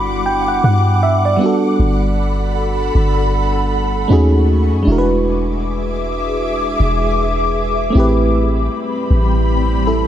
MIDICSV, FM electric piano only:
0, 0, Header, 1, 2, 480
1, 0, Start_track
1, 0, Key_signature, 1, "minor"
1, 0, Tempo, 769231
1, 1117, Time_signature, 4, 2, 24, 8
1, 6286, End_track
2, 0, Start_track
2, 0, Title_t, "FM electric piano"
2, 0, Program_c, 0, 5
2, 0, Control_c, 0, 64, 127
2, 0, Note_on_c, 0, 55, 75
2, 0, Note_on_c, 0, 59, 71
2, 0, Note_on_c, 0, 62, 68
2, 0, Note_on_c, 0, 64, 65
2, 0, Note_on_c, 0, 66, 81
2, 0, Note_on_c, 0, 83, 72
2, 143, Note_off_c, 0, 83, 0
2, 162, Note_on_c, 0, 79, 77
2, 289, Note_off_c, 0, 79, 0
2, 301, Note_on_c, 0, 78, 74
2, 392, Note_off_c, 0, 78, 0
2, 401, Note_on_c, 0, 78, 75
2, 623, Note_off_c, 0, 78, 0
2, 642, Note_on_c, 0, 76, 80
2, 769, Note_off_c, 0, 76, 0
2, 781, Note_on_c, 0, 74, 79
2, 840, Note_off_c, 0, 55, 0
2, 847, Note_off_c, 0, 59, 0
2, 851, Note_on_c, 0, 55, 75
2, 854, Note_off_c, 0, 62, 0
2, 861, Note_off_c, 0, 64, 0
2, 866, Note_on_c, 0, 59, 68
2, 868, Note_off_c, 0, 66, 0
2, 880, Note_on_c, 0, 62, 73
2, 887, Control_c, 0, 64, 0
2, 895, Note_on_c, 0, 66, 68
2, 909, Note_on_c, 0, 69, 83
2, 978, Control_c, 0, 64, 127
2, 1096, Note_off_c, 0, 74, 0
2, 2519, Note_off_c, 0, 55, 0
2, 2526, Note_off_c, 0, 59, 0
2, 2534, Note_off_c, 0, 62, 0
2, 2541, Note_off_c, 0, 66, 0
2, 2545, Note_on_c, 0, 57, 80
2, 2548, Note_off_c, 0, 69, 0
2, 2553, Note_on_c, 0, 61, 75
2, 2560, Note_on_c, 0, 63, 73
2, 2564, Control_c, 0, 64, 0
2, 2567, Note_on_c, 0, 66, 72
2, 2574, Note_on_c, 0, 68, 84
2, 2668, Control_c, 0, 64, 127
2, 3012, Note_on_c, 0, 56, 75
2, 3026, Note_on_c, 0, 62, 65
2, 3031, Note_off_c, 0, 57, 0
2, 3035, Note_off_c, 0, 61, 0
2, 3039, Note_off_c, 0, 63, 0
2, 3041, Note_on_c, 0, 64, 67
2, 3042, Note_off_c, 0, 66, 0
2, 3046, Note_off_c, 0, 68, 0
2, 3046, Control_c, 0, 64, 0
2, 3055, Note_on_c, 0, 66, 67
2, 3069, Note_on_c, 0, 70, 66
2, 3100, Note_off_c, 0, 70, 0
2, 3109, Note_on_c, 0, 71, 86
2, 3136, Control_c, 0, 64, 127
2, 4919, Note_off_c, 0, 56, 0
2, 4927, Note_off_c, 0, 62, 0
2, 4931, Note_on_c, 0, 57, 77
2, 4934, Note_off_c, 0, 64, 0
2, 4941, Note_off_c, 0, 66, 0
2, 4945, Note_on_c, 0, 60, 69
2, 4960, Note_on_c, 0, 64, 71
2, 4966, Control_c, 0, 64, 0
2, 4968, Note_off_c, 0, 71, 0
2, 4974, Note_on_c, 0, 67, 69
2, 4989, Note_on_c, 0, 71, 83
2, 5083, Control_c, 0, 64, 127
2, 6135, Note_off_c, 0, 64, 0
2, 6142, Note_off_c, 0, 67, 0
2, 6149, Note_off_c, 0, 71, 0
2, 6160, Note_on_c, 0, 69, 64
2, 6164, Note_on_c, 0, 64, 55
2, 6286, Note_off_c, 0, 57, 0
2, 6286, Note_off_c, 0, 60, 0
2, 6286, Note_off_c, 0, 64, 0
2, 6286, Note_off_c, 0, 69, 0
2, 6286, End_track
0, 0, End_of_file